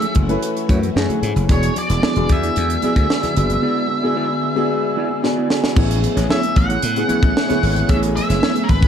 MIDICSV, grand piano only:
0, 0, Header, 1, 2, 480
1, 0, Start_track
1, 0, Key_signature, 3, "major"
1, 0, Tempo, 533333
1, 1347, Time_signature, 4, 2, 24, 8
1, 7991, End_track
2, 0, Start_track
2, 0, Title_t, "Grand piano"
2, 0, Program_c, 0, 0
2, 0, Control_c, 0, 64, 127
2, 0, Note_on_c, 0, 57, 72
2, 0, Note_on_c, 0, 61, 67
2, 0, Note_on_c, 0, 64, 63
2, 0, Note_on_c, 0, 68, 87
2, 103, Note_off_c, 0, 57, 0
2, 105, Note_off_c, 0, 61, 0
2, 108, Note_off_c, 0, 64, 0
2, 111, Note_off_c, 0, 68, 0
2, 255, Note_on_c, 0, 57, 104
2, 260, Note_on_c, 0, 61, 92
2, 265, Note_on_c, 0, 64, 88
2, 268, Note_on_c, 0, 71, 125
2, 665, Note_off_c, 0, 57, 0
2, 667, Note_off_c, 0, 61, 0
2, 670, Note_off_c, 0, 64, 0
2, 671, Note_off_c, 0, 71, 0
2, 861, Note_on_c, 0, 57, 93
2, 862, Note_on_c, 0, 61, 92
2, 866, Note_on_c, 0, 64, 77
2, 868, Note_on_c, 0, 68, 107
2, 1187, Note_off_c, 0, 57, 0
2, 1188, Note_off_c, 0, 61, 0
2, 1190, Note_off_c, 0, 64, 0
2, 1191, Note_off_c, 0, 68, 0
2, 1338, Note_on_c, 0, 59, 66
2, 1345, Note_on_c, 0, 62, 60
2, 1348, Note_on_c, 0, 66, 68
2, 1348, Note_on_c, 0, 68, 69
2, 1360, Control_c, 0, 64, 0
2, 1518, Control_c, 0, 64, 127
2, 1747, Note_off_c, 0, 59, 0
2, 1750, Note_off_c, 0, 62, 0
2, 1752, Note_off_c, 0, 66, 0
2, 1752, Note_off_c, 0, 68, 0
2, 1943, Note_on_c, 0, 59, 81
2, 1947, Note_on_c, 0, 62, 72
2, 1950, Note_on_c, 0, 66, 75
2, 1953, Note_on_c, 0, 68, 97
2, 2349, Note_off_c, 0, 59, 0
2, 2352, Note_off_c, 0, 62, 0
2, 2353, Note_off_c, 0, 66, 0
2, 2354, Note_off_c, 0, 68, 0
2, 2550, Note_on_c, 0, 59, 86
2, 2556, Note_on_c, 0, 62, 78
2, 2557, Note_on_c, 0, 66, 69
2, 2559, Note_on_c, 0, 68, 96
2, 2872, Note_off_c, 0, 59, 0
2, 2875, Note_off_c, 0, 62, 0
2, 2876, Note_off_c, 0, 66, 0
2, 2877, Note_off_c, 0, 68, 0
2, 3025, Note_on_c, 0, 59, 91
2, 3030, Note_on_c, 0, 62, 71
2, 3034, Note_on_c, 0, 66, 77
2, 3037, Note_on_c, 0, 68, 86
2, 3431, Note_off_c, 0, 59, 0
2, 3433, Note_off_c, 0, 62, 0
2, 3435, Note_off_c, 0, 66, 0
2, 3437, Note_off_c, 0, 68, 0
2, 3625, Note_on_c, 0, 59, 95
2, 3629, Note_on_c, 0, 62, 82
2, 3630, Note_on_c, 0, 66, 86
2, 3634, Note_on_c, 0, 68, 103
2, 3950, Note_off_c, 0, 59, 0
2, 3952, Note_off_c, 0, 62, 0
2, 3952, Note_off_c, 0, 66, 0
2, 3954, Note_off_c, 0, 68, 0
2, 4099, Note_on_c, 0, 59, 107
2, 4104, Note_on_c, 0, 62, 101
2, 4107, Note_on_c, 0, 68, 124
2, 4108, Note_on_c, 0, 66, 96
2, 4507, Note_off_c, 0, 59, 0
2, 4510, Note_off_c, 0, 62, 0
2, 4511, Note_off_c, 0, 68, 0
2, 4512, Note_off_c, 0, 66, 0
2, 4702, Note_on_c, 0, 59, 95
2, 4704, Note_on_c, 0, 62, 91
2, 4710, Note_on_c, 0, 66, 89
2, 4713, Note_on_c, 0, 68, 103
2, 5028, Note_off_c, 0, 59, 0
2, 5029, Note_off_c, 0, 62, 0
2, 5032, Note_off_c, 0, 66, 0
2, 5034, Note_off_c, 0, 68, 0
2, 5180, Note_on_c, 0, 59, 100
2, 5189, Note_on_c, 0, 61, 90
2, 5190, Note_on_c, 0, 64, 90
2, 5190, Note_on_c, 0, 68, 105
2, 5199, Control_c, 0, 64, 0
2, 5352, Control_c, 0, 64, 127
2, 5829, Note_off_c, 0, 59, 0
2, 5834, Note_off_c, 0, 61, 0
2, 5834, Note_off_c, 0, 64, 0
2, 5835, Note_off_c, 0, 68, 0
2, 6260, Note_on_c, 0, 59, 84
2, 6268, Note_on_c, 0, 64, 72
2, 6269, Note_on_c, 0, 61, 75
2, 6273, Note_on_c, 0, 68, 92
2, 6425, Note_off_c, 0, 59, 0
2, 6429, Note_off_c, 0, 61, 0
2, 6429, Note_off_c, 0, 64, 0
2, 6431, Note_off_c, 0, 68, 0
2, 6500, Note_on_c, 0, 59, 94
2, 6502, Note_on_c, 0, 61, 82
2, 6506, Note_on_c, 0, 64, 86
2, 6507, Note_on_c, 0, 68, 92
2, 6665, Note_off_c, 0, 59, 0
2, 6666, Note_off_c, 0, 61, 0
2, 6668, Note_off_c, 0, 64, 0
2, 6668, Note_off_c, 0, 68, 0
2, 6738, Note_on_c, 0, 59, 113
2, 6744, Note_on_c, 0, 61, 100
2, 6748, Note_on_c, 0, 64, 100
2, 6749, Note_on_c, 0, 68, 115
2, 6985, Note_off_c, 0, 59, 0
2, 6987, Note_off_c, 0, 61, 0
2, 6989, Note_off_c, 0, 64, 0
2, 6990, Note_off_c, 0, 68, 0
2, 7096, Note_on_c, 0, 59, 87
2, 7100, Note_on_c, 0, 61, 68
2, 7105, Note_on_c, 0, 64, 76
2, 7107, Note_on_c, 0, 68, 93
2, 7746, Note_off_c, 0, 59, 0
2, 7748, Note_off_c, 0, 61, 0
2, 7751, Note_off_c, 0, 64, 0
2, 7752, Note_off_c, 0, 68, 0
2, 7991, End_track
0, 0, End_of_file